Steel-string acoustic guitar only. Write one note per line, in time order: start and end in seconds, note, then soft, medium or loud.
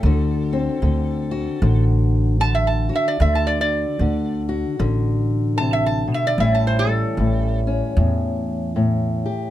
0.05 0.82 D3 medium
0.05 1.31 F#4 medium
0.53 3.17 C4 medium
0.83 1.62 D3 medium
1.31 2.88 F#4 medium
1.63 2.39 D3 medium
2.40 3.20 D3 medium
2.89 3.17 F#4 medium
3.21 4.00 D3 medium
3.21 4.48 F#4 medium
4.01 4.78 D3 medium
4.49 6.34 F#4 medium
4.79 6.38 D3 medium
5.60 6.07 C3 medium
6.07 6.38 B2 medium
6.39 7.19 A2 medium
6.39 9.50 E3 medium
6.39 6.86 G3 medium
6.39 7.67 C#4 medium
6.39 9.24 G4 medium
6.87 9.50 G3 medium
7.19 7.97 A2 medium
7.67 9.50 C#4 medium
7.97 8.75 A2 medium
8.76 9.50 A2 medium
9.26 9.50 G4 medium